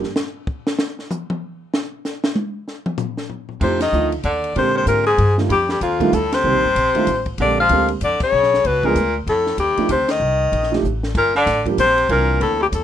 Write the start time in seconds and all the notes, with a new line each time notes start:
0.03 snare
0.16 snare, hi-hat pedal
0.47 kick
0.67 snare
0.79 snare
0.99 snare
1.11 hi-hat pedal, mid tom
1.30 mid tom
1.74 snare
2.05 snare, hi-hat pedal
2.24 snare
2.36 high tom
2.68 snare
2.86 mid tom
2.98 floor tom, hi-hat pedal
3.17 snare
3.30 floor tom
3.49 floor tom
3.61 F2 C3 F3 A3 D4 D#4 G4 C5, kick, crash
3.80 D#3 D#5, snare, ride
3.93 D2 F3 A3 D4 D#4 F4, hi-hat pedal
4.12 ride
4.23 D#2 D3 D5, kick, hi-hat pedal, ride
4.44 ride
4.55 A#2 C3 D3 G#3 A#3 C4 G4 C5, kick, ride
4.74 C3 C5
4.86 G#2 A#2 A#4, kick, hi-hat pedal, ride
5.06 G#2 G#4
5.18 G2, kick, ride
5.38 D#3 G3 A3 D4 F4, snare
5.49 F2 G2 G4, kick, ride
5.69 G2 G4, snare
5.81 D#2 F2 F4, kick, hi-hat pedal, ride
6.00 D#3 G3 A3 D4 F4, kick, ride
6.12 D2 A2 A4, kick, hi-hat pedal, ride
6.32 C3 C5, snare, ride
6.44 C2 D#3 G3 A#3 C4 G4
6.54 A#1
6.65 G1
6.75 A#1, kick, hi-hat pedal, ride
6.95 D#3 G3 A3 D4 F4, muted upright bass stroke, ride
7.07 A1, kick, hi-hat pedal, ride
7.26 kick, ride
7.38 A#1 D3 G#3 A#3 C4 G4, kick, ride
7.42 D5
7.60 F3 F5
7.69 D2 D3 G#3 A#3 C4 G4, kick, hi-hat pedal, ride
7.88 ride
8.01 F2 D3 D5, kick, hi-hat pedal, ride
8.20 C#3 C#5, muted upright bass stroke, kick, crash
8.32 B1
8.43 snare
8.54 snare
8.64 C#2 B2 B4, kick, ride
8.83 A#2 F3 G#3 B3 D4 G#4 A#4, kick
8.95 D2, kick, hi-hat pedal, ride
9.27 F2 A2 A4, kick, ride
9.46 snare
9.58 D#2 G2 G4, kick, hi-hat pedal, ride
9.77 F3 A3 D4 D#4 G4, muted upright bass stroke, ride
9.89 D2 C3 C5, kick, hi-hat pedal, ride
10.08 D#3 D#5, snare, ride
10.20 C2
10.52 A#1, kick, ride
10.63 snare
10.71 F3 A3 D4 D#4 G4, snare
10.83 A1, hi-hat pedal
11.03 snare
11.15 G1 A#2 A#4, kick, crash
11.35 D3 D5, snare
11.46 A1, kick, snare, hi-hat pedal, ride
11.65 F3 G3 A#3 D4 G4, kick, ride
11.78 A#1 C3 C5, kick, hi-hat pedal, ride
11.98 ride
12.09 C2 A#2 E3 A#3 C4 D4 A#4, kick, ride
12.41 D2 A2 A4, kick, ride
12.59 G2 G4
12.71 E2 A2 A4, kick, hi-hat pedal, ride